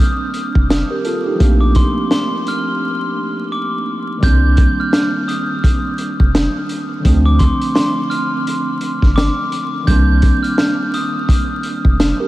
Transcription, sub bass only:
0.56 0.83 F1 medium
1.41 1.84 A#1 loud
4.23 4.66 C2 loud
6.20 6.47 F1 medium
7.05 7.48 D2 loud
9.03 9.30 G1 medium
9.88 10.31 C2 loud
11.85 12.12 F1 medium

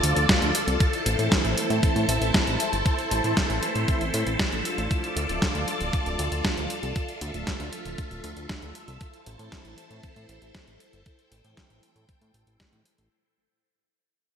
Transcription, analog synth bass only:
0.03 0.14 D2 medium
0.16 0.26 D2 medium
0.42 0.52 D2 medium
0.67 0.78 C2 medium
1.06 1.16 A1 medium
1.19 1.29 A2 medium
1.44 1.55 A1 medium
1.70 1.80 A2 medium
1.96 2.06 A2 medium
2.09 2.19 A1 medium
2.21 2.32 A1 medium
2.47 2.57 A1 medium
2.73 2.83 G1 medium
3.11 3.21 A1 medium
3.24 3.34 A2 medium
3.50 3.60 A1 medium
3.75 3.86 A2 medium
4.01 4.11 A1 medium
4.14 4.24 A2 medium
4.27 4.37 A1 medium
4.52 4.62 A1 medium
4.78 4.88 A1 medium
5.16 5.26 D2 medium
5.29 5.39 D1 medium
5.55 5.65 D2 medium
5.80 5.91 D1 medium
6.06 6.16 D1 medium
6.19 6.29 D2 medium
6.32 6.42 D2 medium
6.57 6.67 D2 medium
6.83 6.93 C2 medium
7.21 7.32 D2 medium
7.34 7.44 D1 medium
7.60 7.70 D2 medium
7.85 7.96 D1 medium
8.11 8.21 D1 medium
8.24 8.34 D2 medium
8.37 8.47 D2 medium
8.62 8.73 D2 medium
8.88 8.98 C2 medium
9.26 9.37 A1 medium
9.39 9.49 A2 medium
9.65 9.75 A1 medium
9.90 10.01 A2 medium
10.16 10.26 A2 medium
10.29 10.39 A1 medium
10.42 10.52 A1 medium
10.67 10.78 A1 medium
10.93 11.03 G1 medium
11.32 11.42 A1 medium
11.45 11.55 A2 medium
11.70 11.80 A1 medium
11.96 12.06 A2 medium
12.21 12.32 A2 medium
12.34 12.44 A1 medium
12.47 12.57 A1 medium
12.73 12.83 A2 medium
12.98 13.09 A1 medium

